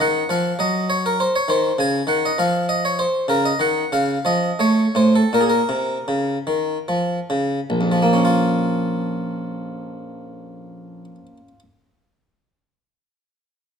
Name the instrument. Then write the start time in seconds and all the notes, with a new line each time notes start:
harpsichord
0.00 D#3 F#5
0.29 F3 F5
0.59 F#3 D#5
0.90 C#5
1.06 A#4
1.20 C5
1.36 C#5
1.48 D#3 C5
1.79 C#3 G#5
2.07 D#3 F#5
2.25 D#5
2.38 F3 F5
2.69 D#5
2.85 C#5
2.99 C5
3.28 C#3 A#4
3.45 D#5
3.59 D#3 F#5
3.92 C#3 F5
4.25 F3 D#5
4.59 A3 C#5
4.95 A2 C5
5.16 A4
5.33 A#2 A#4
5.41 G#4
5.50 A#4
5.69 C3
6.08 C#3
6.47 D#3
6.88 F3
7.30 C#3
7.70 A#1
7.81 F2
7.92 F3
8.02 A#3
8.13 C#4
8.25 F4